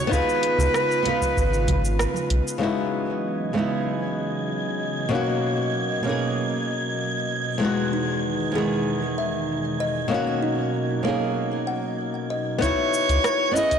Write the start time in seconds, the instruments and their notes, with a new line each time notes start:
Already playing: analog synth pad G#3 B3
0.05 nylon-string guitar B3, soprano saxophone C#5
0.09 sub bass C#2, analog synth pad C#3 F4, nylon-string guitar D#4 F4, soprano saxophone B4, kick, shaker
0.14 nylon-string guitar G#4
0.29 shaker
0.43 closed hi-hat
0.58 sub bass C#2, low conga, shaker
0.74 cross-stick, shaker
0.92 shaker
1.03 nylon-string guitar B3 D#4 F4, closed hi-hat, low conga
1.08 nylon-string guitar B4
1.21 kick, high conga, shaker
1.37 sub bass G#1, kick, shaker
1.54 shaker
1.67 kick, closed hi-hat, high conga, low conga
1.85 shaker
1.99 cross-stick, shaker
2.14 high conga, shaker
2.30 sub bass B1, closed hi-hat
2.48 shaker
2.58 nylon-string guitar C#3 G#3 B3 D#4, analog synth pad C#3 E3 F#3 D#5, synth texture G#6
2.62 analog synth pad B3, nylon-string guitar E4 F#4
3.53 nylon-string guitar C#3 G#3 B3 D#4
3.58 nylon-string guitar E4 G#4
5.09 nylon-string guitar B2 A#3 C#4, analog synth pad B2 A#3
5.13 nylon-string guitar D#4 F#4
6.03 nylon-string guitar B2 A#3 C#4
6.07 nylon-string guitar D#4 G#4
7.58 nylon-string guitar E2 G#3 B3, analog synth pad D#3 G#3 D#4
7.63 nylon-string guitar D#4 F#4
7.93 kalimba D#4
8.52 nylon-string guitar E2 G#3 B3, kalimba G#4
8.56 nylon-string guitar D#3 G#4
9.18 kalimba E5
9.80 kalimba D#5
10.08 nylon-string guitar B2 A#3 C#4, analog synth pad F#3 A#3
10.13 nylon-string guitar D#4 F#4
10.43 kalimba D#4
11.03 nylon-string guitar B2 A#3 C#4, kalimba A#4
11.07 nylon-string guitar D#4 G#4
11.67 kalimba F#5
12.30 kalimba D#5
12.58 sub bass C#2, nylon-string guitar B3 D#4, soprano saxophone C#5, kick, closed hi-hat
12.63 nylon-string guitar E4 F#4, shaker
12.94 shaker
13.09 sub bass C#2, closed hi-hat, shaker
13.24 cross-stick, closed hi-hat, shaker
13.51 nylon-string guitar B3 C#4, soprano saxophone D#5
13.56 nylon-string guitar E4 G#4, shaker
13.71 kick, closed hi-hat, shaker